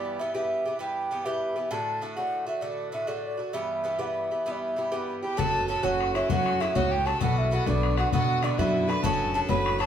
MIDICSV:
0, 0, Header, 1, 7, 480
1, 0, Start_track
1, 0, Tempo, 305188
1, 2689, Time_signature, 12, 3, 24, 8
1, 15509, End_track
2, 0, Start_track
2, 0, Title_t, "Flute"
2, 0, Program_c, 0, 73
2, 0, Note_on_c, 0, 74, 89
2, 313, Note_on_c, 0, 76, 80
2, 337, Note_off_c, 0, 74, 0
2, 538, Note_off_c, 0, 76, 0
2, 561, Note_on_c, 0, 76, 92
2, 1216, Note_off_c, 0, 76, 0
2, 1274, Note_on_c, 0, 79, 81
2, 1968, Note_on_c, 0, 76, 77
2, 1992, Note_off_c, 0, 79, 0
2, 2695, Note_on_c, 0, 81, 91
2, 2718, Note_off_c, 0, 76, 0
2, 3179, Note_off_c, 0, 81, 0
2, 3402, Note_on_c, 0, 78, 102
2, 3859, Note_off_c, 0, 78, 0
2, 3901, Note_on_c, 0, 76, 77
2, 4121, Note_on_c, 0, 74, 86
2, 4144, Note_off_c, 0, 76, 0
2, 4596, Note_off_c, 0, 74, 0
2, 4605, Note_on_c, 0, 76, 79
2, 4840, Note_on_c, 0, 74, 68
2, 4864, Note_off_c, 0, 76, 0
2, 5100, Note_off_c, 0, 74, 0
2, 5115, Note_on_c, 0, 74, 78
2, 5563, Note_on_c, 0, 76, 72
2, 5586, Note_off_c, 0, 74, 0
2, 6311, Note_on_c, 0, 78, 59
2, 6334, Note_off_c, 0, 76, 0
2, 6378, Note_on_c, 0, 76, 84
2, 6401, Note_off_c, 0, 78, 0
2, 7101, Note_on_c, 0, 74, 50
2, 7124, Note_off_c, 0, 76, 0
2, 7179, Note_on_c, 0, 76, 83
2, 7202, Note_off_c, 0, 74, 0
2, 7773, Note_off_c, 0, 76, 0
2, 8220, Note_on_c, 0, 79, 90
2, 8458, Note_on_c, 0, 81, 121
2, 8481, Note_off_c, 0, 79, 0
2, 8946, Note_off_c, 0, 81, 0
2, 8960, Note_on_c, 0, 81, 89
2, 9191, Note_on_c, 0, 78, 104
2, 9214, Note_off_c, 0, 81, 0
2, 9658, Note_off_c, 0, 78, 0
2, 9667, Note_on_c, 0, 76, 90
2, 9885, Note_off_c, 0, 76, 0
2, 9921, Note_on_c, 0, 78, 109
2, 10394, Note_on_c, 0, 76, 95
2, 10418, Note_off_c, 0, 78, 0
2, 10637, Note_on_c, 0, 78, 95
2, 10660, Note_off_c, 0, 76, 0
2, 10865, Note_on_c, 0, 79, 119
2, 10888, Note_off_c, 0, 78, 0
2, 11111, Note_on_c, 0, 81, 102
2, 11135, Note_off_c, 0, 79, 0
2, 11342, Note_off_c, 0, 81, 0
2, 11354, Note_on_c, 0, 78, 99
2, 11612, Note_on_c, 0, 76, 92
2, 11635, Note_off_c, 0, 78, 0
2, 11854, Note_on_c, 0, 78, 98
2, 11877, Note_off_c, 0, 76, 0
2, 12073, Note_off_c, 0, 78, 0
2, 12089, Note_on_c, 0, 74, 107
2, 12525, Note_off_c, 0, 74, 0
2, 12560, Note_on_c, 0, 78, 108
2, 12769, Note_off_c, 0, 78, 0
2, 12789, Note_on_c, 0, 78, 113
2, 13274, Note_on_c, 0, 74, 99
2, 13297, Note_off_c, 0, 78, 0
2, 13505, Note_on_c, 0, 76, 88
2, 13529, Note_off_c, 0, 74, 0
2, 13996, Note_on_c, 0, 83, 98
2, 14020, Note_off_c, 0, 76, 0
2, 14214, Note_off_c, 0, 83, 0
2, 14223, Note_on_c, 0, 81, 106
2, 14668, Note_off_c, 0, 81, 0
2, 14701, Note_on_c, 0, 81, 113
2, 14795, Note_off_c, 0, 81, 0
2, 14935, Note_on_c, 0, 83, 120
2, 15431, Note_on_c, 0, 81, 110
2, 15455, Note_off_c, 0, 83, 0
2, 15509, Note_off_c, 0, 81, 0
2, 15509, End_track
3, 0, Start_track
3, 0, Title_t, "Fiddle"
3, 0, Program_c, 1, 110
3, 8231, Note_on_c, 1, 67, 67
3, 8481, Note_on_c, 1, 69, 86
3, 8504, Note_off_c, 1, 67, 0
3, 8922, Note_off_c, 1, 69, 0
3, 8932, Note_on_c, 1, 69, 84
3, 9175, Note_on_c, 1, 66, 88
3, 9199, Note_off_c, 1, 69, 0
3, 9669, Note_on_c, 1, 64, 74
3, 9693, Note_off_c, 1, 66, 0
3, 9905, Note_on_c, 1, 66, 93
3, 9928, Note_off_c, 1, 64, 0
3, 10393, Note_on_c, 1, 64, 78
3, 10417, Note_off_c, 1, 66, 0
3, 10604, Note_off_c, 1, 64, 0
3, 10613, Note_on_c, 1, 66, 89
3, 10871, Note_on_c, 1, 67, 74
3, 10895, Note_off_c, 1, 66, 0
3, 11092, Note_on_c, 1, 69, 74
3, 11116, Note_off_c, 1, 67, 0
3, 11327, Note_on_c, 1, 66, 84
3, 11351, Note_off_c, 1, 69, 0
3, 11814, Note_off_c, 1, 66, 0
3, 11823, Note_on_c, 1, 66, 86
3, 12046, Note_on_c, 1, 62, 83
3, 12070, Note_off_c, 1, 66, 0
3, 12522, Note_on_c, 1, 66, 73
3, 12546, Note_off_c, 1, 62, 0
3, 12750, Note_off_c, 1, 66, 0
3, 12759, Note_on_c, 1, 66, 94
3, 13236, Note_on_c, 1, 62, 84
3, 13259, Note_off_c, 1, 66, 0
3, 13484, Note_on_c, 1, 64, 83
3, 13507, Note_off_c, 1, 62, 0
3, 13959, Note_on_c, 1, 71, 90
3, 13982, Note_off_c, 1, 64, 0
3, 14205, Note_on_c, 1, 69, 79
3, 14229, Note_off_c, 1, 71, 0
3, 14921, Note_on_c, 1, 71, 83
3, 14945, Note_off_c, 1, 69, 0
3, 15389, Note_off_c, 1, 71, 0
3, 15399, Note_on_c, 1, 69, 88
3, 15509, Note_off_c, 1, 69, 0
3, 15509, End_track
4, 0, Start_track
4, 0, Title_t, "Harp"
4, 0, Program_c, 2, 46
4, 8247, Note_on_c, 2, 67, 62
4, 8464, Note_on_c, 2, 69, 95
4, 8746, Note_on_c, 2, 71, 73
4, 8945, Note_off_c, 2, 69, 0
4, 8951, Note_on_c, 2, 69, 86
4, 9180, Note_on_c, 2, 66, 83
4, 9275, Note_off_c, 2, 67, 0
4, 9646, Note_on_c, 2, 64, 57
4, 9902, Note_off_c, 2, 66, 0
4, 9908, Note_on_c, 2, 66, 79
4, 10371, Note_off_c, 2, 64, 0
4, 10377, Note_on_c, 2, 64, 65
4, 10608, Note_off_c, 2, 66, 0
4, 10615, Note_on_c, 2, 66, 88
4, 10887, Note_on_c, 2, 67, 84
4, 10981, Note_off_c, 2, 66, 0
4, 11114, Note_off_c, 2, 69, 0
4, 11121, Note_on_c, 2, 69, 79
4, 11343, Note_on_c, 2, 66, 91
4, 11438, Note_off_c, 2, 67, 0
4, 11592, Note_off_c, 2, 64, 0
4, 11599, Note_on_c, 2, 64, 75
4, 11807, Note_off_c, 2, 66, 0
4, 11813, Note_on_c, 2, 66, 78
4, 11969, Note_off_c, 2, 71, 0
4, 12060, Note_on_c, 2, 62, 75
4, 12549, Note_off_c, 2, 66, 0
4, 12555, Note_on_c, 2, 66, 71
4, 12778, Note_off_c, 2, 66, 0
4, 12785, Note_on_c, 2, 66, 66
4, 13253, Note_off_c, 2, 62, 0
4, 13259, Note_on_c, 2, 62, 70
4, 13481, Note_off_c, 2, 64, 0
4, 13488, Note_on_c, 2, 64, 88
4, 13730, Note_off_c, 2, 69, 0
4, 13736, Note_on_c, 2, 69, 83
4, 13964, Note_on_c, 2, 71, 95
4, 14195, Note_off_c, 2, 69, 0
4, 14201, Note_on_c, 2, 69, 102
4, 14689, Note_off_c, 2, 69, 0
4, 14695, Note_on_c, 2, 69, 89
4, 14910, Note_off_c, 2, 71, 0
4, 14916, Note_on_c, 2, 71, 96
4, 15392, Note_off_c, 2, 69, 0
4, 15398, Note_on_c, 2, 69, 67
4, 15509, Note_off_c, 2, 62, 0
4, 15509, Note_off_c, 2, 64, 0
4, 15509, Note_off_c, 2, 66, 0
4, 15509, Note_off_c, 2, 69, 0
4, 15509, Note_off_c, 2, 71, 0
4, 15509, End_track
5, 0, Start_track
5, 0, Title_t, "Bouzouki"
5, 0, Program_c, 3, 25
5, 0, Note_on_c, 3, 43, 64
5, 0, Note_on_c, 3, 52, 71
5, 0, Note_on_c, 3, 59, 69
5, 0, Note_on_c, 3, 67, 69
5, 285, Note_off_c, 3, 43, 0
5, 301, Note_off_c, 3, 52, 0
5, 304, Note_off_c, 3, 59, 0
5, 304, Note_on_c, 3, 43, 58
5, 307, Note_off_c, 3, 67, 0
5, 323, Note_on_c, 3, 52, 49
5, 330, Note_on_c, 3, 59, 62
5, 333, Note_on_c, 3, 67, 62
5, 523, Note_off_c, 3, 67, 0
5, 526, Note_off_c, 3, 59, 0
5, 534, Note_off_c, 3, 43, 0
5, 539, Note_off_c, 3, 52, 0
5, 542, Note_on_c, 3, 67, 60
5, 545, Note_on_c, 3, 59, 63
5, 558, Note_on_c, 3, 52, 50
5, 564, Note_on_c, 3, 43, 46
5, 1012, Note_off_c, 3, 67, 0
5, 1023, Note_off_c, 3, 59, 0
5, 1030, Note_off_c, 3, 52, 0
5, 1030, Note_on_c, 3, 67, 52
5, 1032, Note_off_c, 3, 43, 0
5, 1052, Note_on_c, 3, 59, 39
5, 1063, Note_on_c, 3, 52, 43
5, 1240, Note_off_c, 3, 52, 0
5, 1242, Note_on_c, 3, 43, 56
5, 1245, Note_off_c, 3, 59, 0
5, 1249, Note_off_c, 3, 67, 0
5, 1259, Note_on_c, 3, 52, 56
5, 1264, Note_on_c, 3, 59, 65
5, 1268, Note_on_c, 3, 67, 59
5, 1725, Note_off_c, 3, 43, 0
5, 1732, Note_off_c, 3, 52, 0
5, 1743, Note_off_c, 3, 59, 0
5, 1744, Note_on_c, 3, 43, 46
5, 1745, Note_off_c, 3, 67, 0
5, 1751, Note_on_c, 3, 52, 53
5, 1762, Note_on_c, 3, 59, 51
5, 1768, Note_on_c, 3, 67, 59
5, 1955, Note_off_c, 3, 67, 0
5, 1963, Note_off_c, 3, 59, 0
5, 1966, Note_off_c, 3, 52, 0
5, 1974, Note_off_c, 3, 43, 0
5, 1974, Note_on_c, 3, 67, 70
5, 1982, Note_on_c, 3, 59, 60
5, 1985, Note_on_c, 3, 52, 59
5, 1994, Note_on_c, 3, 43, 54
5, 2430, Note_off_c, 3, 67, 0
5, 2441, Note_off_c, 3, 59, 0
5, 2449, Note_on_c, 3, 67, 43
5, 2459, Note_off_c, 3, 52, 0
5, 2460, Note_on_c, 3, 59, 43
5, 2468, Note_off_c, 3, 43, 0
5, 2478, Note_on_c, 3, 52, 41
5, 2684, Note_off_c, 3, 52, 0
5, 2684, Note_off_c, 3, 59, 0
5, 2685, Note_on_c, 3, 45, 83
5, 2687, Note_off_c, 3, 67, 0
5, 2690, Note_on_c, 3, 57, 75
5, 2691, Note_on_c, 3, 50, 75
5, 2703, Note_on_c, 3, 66, 77
5, 3147, Note_off_c, 3, 45, 0
5, 3159, Note_off_c, 3, 50, 0
5, 3166, Note_on_c, 3, 45, 45
5, 3168, Note_off_c, 3, 57, 0
5, 3174, Note_off_c, 3, 66, 0
5, 3178, Note_on_c, 3, 50, 63
5, 3187, Note_on_c, 3, 57, 58
5, 3192, Note_on_c, 3, 66, 59
5, 3387, Note_off_c, 3, 66, 0
5, 3391, Note_off_c, 3, 57, 0
5, 3400, Note_off_c, 3, 50, 0
5, 3406, Note_off_c, 3, 45, 0
5, 3406, Note_on_c, 3, 66, 54
5, 3410, Note_on_c, 3, 57, 57
5, 3419, Note_on_c, 3, 50, 49
5, 3422, Note_on_c, 3, 45, 43
5, 3859, Note_off_c, 3, 66, 0
5, 3872, Note_off_c, 3, 57, 0
5, 3877, Note_on_c, 3, 66, 49
5, 3891, Note_on_c, 3, 57, 44
5, 3892, Note_off_c, 3, 50, 0
5, 3904, Note_off_c, 3, 45, 0
5, 3911, Note_on_c, 3, 50, 43
5, 4104, Note_off_c, 3, 57, 0
5, 4105, Note_off_c, 3, 50, 0
5, 4108, Note_on_c, 3, 45, 48
5, 4110, Note_off_c, 3, 66, 0
5, 4123, Note_on_c, 3, 57, 65
5, 4124, Note_on_c, 3, 50, 63
5, 4129, Note_on_c, 3, 66, 56
5, 4574, Note_off_c, 3, 45, 0
5, 4583, Note_off_c, 3, 50, 0
5, 4593, Note_off_c, 3, 57, 0
5, 4593, Note_on_c, 3, 45, 51
5, 4602, Note_on_c, 3, 50, 56
5, 4605, Note_off_c, 3, 66, 0
5, 4612, Note_on_c, 3, 57, 47
5, 4624, Note_on_c, 3, 66, 58
5, 4813, Note_off_c, 3, 66, 0
5, 4824, Note_off_c, 3, 57, 0
5, 4827, Note_off_c, 3, 50, 0
5, 4831, Note_on_c, 3, 66, 64
5, 4837, Note_off_c, 3, 45, 0
5, 4842, Note_on_c, 3, 57, 56
5, 4846, Note_on_c, 3, 50, 62
5, 4856, Note_on_c, 3, 45, 46
5, 5289, Note_off_c, 3, 66, 0
5, 5308, Note_on_c, 3, 66, 35
5, 5312, Note_off_c, 3, 57, 0
5, 5318, Note_off_c, 3, 50, 0
5, 5331, Note_on_c, 3, 57, 35
5, 5337, Note_on_c, 3, 50, 35
5, 5343, Note_off_c, 3, 45, 0
5, 5556, Note_on_c, 3, 43, 70
5, 5557, Note_off_c, 3, 50, 0
5, 5560, Note_off_c, 3, 66, 0
5, 5563, Note_on_c, 3, 52, 72
5, 5565, Note_off_c, 3, 57, 0
5, 5571, Note_on_c, 3, 59, 75
5, 5574, Note_on_c, 3, 67, 81
5, 6017, Note_off_c, 3, 43, 0
5, 6024, Note_off_c, 3, 52, 0
5, 6030, Note_off_c, 3, 59, 0
5, 6036, Note_on_c, 3, 43, 52
5, 6043, Note_off_c, 3, 67, 0
5, 6043, Note_on_c, 3, 52, 52
5, 6049, Note_on_c, 3, 59, 56
5, 6062, Note_on_c, 3, 67, 58
5, 6250, Note_off_c, 3, 67, 0
5, 6260, Note_off_c, 3, 43, 0
5, 6260, Note_off_c, 3, 59, 0
5, 6262, Note_off_c, 3, 52, 0
5, 6268, Note_on_c, 3, 67, 59
5, 6279, Note_on_c, 3, 43, 50
5, 6279, Note_on_c, 3, 59, 62
5, 6281, Note_on_c, 3, 52, 52
5, 6761, Note_off_c, 3, 67, 0
5, 6770, Note_off_c, 3, 59, 0
5, 6776, Note_off_c, 3, 43, 0
5, 6777, Note_off_c, 3, 52, 0
5, 6780, Note_on_c, 3, 67, 41
5, 6789, Note_on_c, 3, 59, 37
5, 6800, Note_on_c, 3, 52, 32
5, 7001, Note_off_c, 3, 52, 0
5, 7009, Note_off_c, 3, 59, 0
5, 7011, Note_on_c, 3, 43, 62
5, 7018, Note_off_c, 3, 67, 0
5, 7020, Note_on_c, 3, 52, 66
5, 7028, Note_on_c, 3, 59, 57
5, 7036, Note_on_c, 3, 67, 65
5, 7474, Note_off_c, 3, 43, 0
5, 7484, Note_off_c, 3, 52, 0
5, 7493, Note_on_c, 3, 43, 52
5, 7499, Note_off_c, 3, 59, 0
5, 7503, Note_on_c, 3, 52, 50
5, 7508, Note_off_c, 3, 67, 0
5, 7518, Note_on_c, 3, 59, 47
5, 7527, Note_on_c, 3, 67, 55
5, 7713, Note_off_c, 3, 67, 0
5, 7718, Note_off_c, 3, 59, 0
5, 7726, Note_off_c, 3, 52, 0
5, 7732, Note_on_c, 3, 67, 65
5, 7734, Note_off_c, 3, 43, 0
5, 7737, Note_on_c, 3, 59, 56
5, 7744, Note_on_c, 3, 52, 56
5, 7756, Note_on_c, 3, 43, 49
5, 8200, Note_off_c, 3, 67, 0
5, 8219, Note_off_c, 3, 59, 0
5, 8219, Note_on_c, 3, 67, 39
5, 8230, Note_off_c, 3, 52, 0
5, 8235, Note_off_c, 3, 43, 0
5, 8237, Note_on_c, 3, 59, 41
5, 8246, Note_on_c, 3, 52, 36
5, 8447, Note_on_c, 3, 45, 83
5, 8454, Note_off_c, 3, 52, 0
5, 8458, Note_off_c, 3, 67, 0
5, 8461, Note_on_c, 3, 54, 90
5, 8467, Note_off_c, 3, 59, 0
5, 8474, Note_on_c, 3, 61, 78
5, 8478, Note_on_c, 3, 66, 90
5, 8919, Note_off_c, 3, 45, 0
5, 8938, Note_on_c, 3, 45, 66
5, 8941, Note_off_c, 3, 61, 0
5, 8945, Note_off_c, 3, 54, 0
5, 8951, Note_on_c, 3, 54, 61
5, 8959, Note_on_c, 3, 61, 58
5, 8962, Note_off_c, 3, 66, 0
5, 8969, Note_on_c, 3, 66, 67
5, 9151, Note_off_c, 3, 66, 0
5, 9160, Note_off_c, 3, 61, 0
5, 9168, Note_off_c, 3, 45, 0
5, 9169, Note_off_c, 3, 54, 0
5, 9170, Note_on_c, 3, 66, 82
5, 9179, Note_on_c, 3, 61, 64
5, 9187, Note_on_c, 3, 45, 60
5, 9188, Note_on_c, 3, 54, 70
5, 9658, Note_off_c, 3, 61, 0
5, 9667, Note_off_c, 3, 66, 0
5, 9670, Note_off_c, 3, 45, 0
5, 9673, Note_on_c, 3, 66, 51
5, 9677, Note_on_c, 3, 61, 56
5, 9685, Note_off_c, 3, 54, 0
5, 9691, Note_on_c, 3, 54, 52
5, 9886, Note_off_c, 3, 54, 0
5, 9894, Note_off_c, 3, 61, 0
5, 9904, Note_off_c, 3, 66, 0
5, 9905, Note_on_c, 3, 45, 74
5, 9905, Note_on_c, 3, 54, 76
5, 9913, Note_on_c, 3, 61, 81
5, 9923, Note_on_c, 3, 66, 69
5, 10367, Note_off_c, 3, 45, 0
5, 10386, Note_on_c, 3, 45, 58
5, 10393, Note_off_c, 3, 54, 0
5, 10393, Note_off_c, 3, 61, 0
5, 10399, Note_on_c, 3, 54, 56
5, 10410, Note_off_c, 3, 66, 0
5, 10413, Note_on_c, 3, 61, 64
5, 10417, Note_on_c, 3, 66, 57
5, 10600, Note_off_c, 3, 66, 0
5, 10605, Note_off_c, 3, 61, 0
5, 10613, Note_off_c, 3, 54, 0
5, 10619, Note_on_c, 3, 66, 74
5, 10620, Note_off_c, 3, 45, 0
5, 10624, Note_on_c, 3, 61, 65
5, 10632, Note_on_c, 3, 54, 75
5, 10639, Note_on_c, 3, 45, 70
5, 11091, Note_off_c, 3, 66, 0
5, 11096, Note_off_c, 3, 61, 0
5, 11097, Note_on_c, 3, 66, 48
5, 11115, Note_off_c, 3, 45, 0
5, 11115, Note_on_c, 3, 61, 43
5, 11119, Note_off_c, 3, 54, 0
5, 11125, Note_on_c, 3, 54, 42
5, 11333, Note_on_c, 3, 47, 86
5, 11335, Note_off_c, 3, 66, 0
5, 11337, Note_off_c, 3, 54, 0
5, 11342, Note_off_c, 3, 61, 0
5, 11343, Note_on_c, 3, 50, 77
5, 11348, Note_on_c, 3, 59, 81
5, 11359, Note_on_c, 3, 66, 88
5, 11798, Note_off_c, 3, 47, 0
5, 11810, Note_off_c, 3, 50, 0
5, 11810, Note_off_c, 3, 59, 0
5, 11816, Note_on_c, 3, 47, 59
5, 11828, Note_on_c, 3, 59, 60
5, 11829, Note_on_c, 3, 50, 66
5, 11841, Note_off_c, 3, 66, 0
5, 11848, Note_on_c, 3, 66, 69
5, 12034, Note_off_c, 3, 66, 0
5, 12049, Note_off_c, 3, 50, 0
5, 12050, Note_off_c, 3, 59, 0
5, 12053, Note_on_c, 3, 66, 61
5, 12054, Note_off_c, 3, 47, 0
5, 12068, Note_on_c, 3, 50, 53
5, 12069, Note_on_c, 3, 59, 75
5, 12081, Note_on_c, 3, 47, 57
5, 12539, Note_off_c, 3, 59, 0
5, 12541, Note_off_c, 3, 66, 0
5, 12547, Note_on_c, 3, 66, 51
5, 12548, Note_off_c, 3, 50, 0
5, 12554, Note_off_c, 3, 47, 0
5, 12558, Note_on_c, 3, 59, 47
5, 12572, Note_on_c, 3, 50, 46
5, 12772, Note_off_c, 3, 50, 0
5, 12774, Note_off_c, 3, 59, 0
5, 12779, Note_off_c, 3, 66, 0
5, 12783, Note_on_c, 3, 47, 67
5, 12791, Note_on_c, 3, 50, 73
5, 12793, Note_on_c, 3, 59, 74
5, 12802, Note_on_c, 3, 66, 82
5, 13232, Note_off_c, 3, 47, 0
5, 13251, Note_on_c, 3, 47, 60
5, 13255, Note_off_c, 3, 50, 0
5, 13260, Note_off_c, 3, 59, 0
5, 13274, Note_on_c, 3, 50, 62
5, 13278, Note_off_c, 3, 66, 0
5, 13279, Note_on_c, 3, 59, 61
5, 13284, Note_on_c, 3, 66, 60
5, 13489, Note_off_c, 3, 47, 0
5, 13491, Note_off_c, 3, 59, 0
5, 13494, Note_off_c, 3, 66, 0
5, 13501, Note_off_c, 3, 50, 0
5, 13510, Note_on_c, 3, 59, 63
5, 13513, Note_on_c, 3, 66, 80
5, 13516, Note_on_c, 3, 50, 70
5, 13527, Note_on_c, 3, 47, 60
5, 13969, Note_off_c, 3, 59, 0
5, 13969, Note_off_c, 3, 66, 0
5, 13975, Note_on_c, 3, 66, 54
5, 13983, Note_off_c, 3, 50, 0
5, 13988, Note_on_c, 3, 59, 39
5, 13995, Note_off_c, 3, 47, 0
5, 14002, Note_on_c, 3, 50, 42
5, 14210, Note_off_c, 3, 50, 0
5, 14210, Note_off_c, 3, 66, 0
5, 14212, Note_on_c, 3, 45, 83
5, 14217, Note_off_c, 3, 59, 0
5, 14217, Note_on_c, 3, 54, 89
5, 14225, Note_on_c, 3, 61, 95
5, 14229, Note_on_c, 3, 66, 102
5, 14675, Note_off_c, 3, 45, 0
5, 14690, Note_off_c, 3, 54, 0
5, 14694, Note_on_c, 3, 45, 66
5, 14702, Note_off_c, 3, 61, 0
5, 14705, Note_off_c, 3, 66, 0
5, 14709, Note_on_c, 3, 54, 73
5, 14709, Note_on_c, 3, 61, 66
5, 14722, Note_on_c, 3, 66, 60
5, 14901, Note_off_c, 3, 66, 0
5, 14910, Note_off_c, 3, 61, 0
5, 14919, Note_off_c, 3, 54, 0
5, 14919, Note_on_c, 3, 66, 75
5, 14924, Note_off_c, 3, 45, 0
5, 14929, Note_on_c, 3, 61, 61
5, 14938, Note_on_c, 3, 54, 61
5, 14942, Note_on_c, 3, 45, 57
5, 15373, Note_off_c, 3, 66, 0
5, 15391, Note_on_c, 3, 66, 53
5, 15401, Note_off_c, 3, 54, 0
5, 15405, Note_off_c, 3, 61, 0
5, 15411, Note_on_c, 3, 61, 47
5, 15420, Note_off_c, 3, 45, 0
5, 15420, Note_on_c, 3, 54, 48
5, 15509, Note_off_c, 3, 54, 0
5, 15509, Note_off_c, 3, 61, 0
5, 15509, Note_off_c, 3, 66, 0
5, 15509, End_track
6, 0, Start_track
6, 0, Title_t, "Upright bass"
6, 0, Program_c, 4, 32
6, 8465, Note_on_c, 4, 30, 94
6, 9026, Note_off_c, 4, 30, 0
6, 9184, Note_on_c, 4, 30, 94
6, 9746, Note_off_c, 4, 30, 0
6, 9907, Note_on_c, 4, 42, 89
6, 10467, Note_off_c, 4, 42, 0
6, 10621, Note_on_c, 4, 37, 101
6, 11183, Note_off_c, 4, 37, 0
6, 11339, Note_on_c, 4, 35, 90
6, 11900, Note_off_c, 4, 35, 0
6, 12066, Note_on_c, 4, 35, 92
6, 12624, Note_off_c, 4, 35, 0
6, 12784, Note_on_c, 4, 47, 84
6, 13342, Note_off_c, 4, 47, 0
6, 13498, Note_on_c, 4, 42, 107
6, 14057, Note_off_c, 4, 42, 0
6, 14205, Note_on_c, 4, 30, 96
6, 14768, Note_off_c, 4, 30, 0
6, 14928, Note_on_c, 4, 30, 97
6, 15489, Note_off_c, 4, 30, 0
6, 15509, End_track
7, 0, Start_track
7, 0, Title_t, "Bodhran"
7, 8474, Note_on_c, 9, 64, 78
7, 8631, Note_off_c, 9, 64, 0
7, 9178, Note_on_c, 9, 64, 77
7, 9336, Note_off_c, 9, 64, 0
7, 9445, Note_on_c, 9, 64, 61
7, 9603, Note_off_c, 9, 64, 0
7, 9674, Note_on_c, 9, 64, 65
7, 9831, Note_off_c, 9, 64, 0
7, 9900, Note_on_c, 9, 64, 88
7, 10058, Note_off_c, 9, 64, 0
7, 10159, Note_on_c, 9, 64, 65
7, 10317, Note_off_c, 9, 64, 0
7, 10398, Note_on_c, 9, 64, 61
7, 10556, Note_off_c, 9, 64, 0
7, 10630, Note_on_c, 9, 64, 98
7, 10787, Note_off_c, 9, 64, 0
7, 10889, Note_on_c, 9, 64, 31
7, 11047, Note_off_c, 9, 64, 0
7, 11120, Note_on_c, 9, 64, 57
7, 11278, Note_off_c, 9, 64, 0
7, 11341, Note_on_c, 9, 64, 79
7, 11498, Note_off_c, 9, 64, 0
7, 12057, Note_on_c, 9, 64, 83
7, 12214, Note_off_c, 9, 64, 0
7, 12320, Note_on_c, 9, 64, 63
7, 12477, Note_off_c, 9, 64, 0
7, 12542, Note_on_c, 9, 64, 76
7, 12700, Note_off_c, 9, 64, 0
7, 12777, Note_on_c, 9, 64, 91
7, 12934, Note_off_c, 9, 64, 0
7, 13252, Note_on_c, 9, 64, 71
7, 13410, Note_off_c, 9, 64, 0
7, 13496, Note_on_c, 9, 64, 83
7, 13654, Note_off_c, 9, 64, 0
7, 13754, Note_on_c, 9, 64, 28
7, 13911, Note_off_c, 9, 64, 0
7, 13990, Note_on_c, 9, 64, 60
7, 14147, Note_off_c, 9, 64, 0
7, 14213, Note_on_c, 9, 64, 82
7, 14370, Note_off_c, 9, 64, 0
7, 14928, Note_on_c, 9, 64, 94
7, 15085, Note_off_c, 9, 64, 0
7, 15193, Note_on_c, 9, 64, 74
7, 15351, Note_off_c, 9, 64, 0
7, 15417, Note_on_c, 9, 64, 81
7, 15509, Note_off_c, 9, 64, 0
7, 15509, End_track
0, 0, End_of_file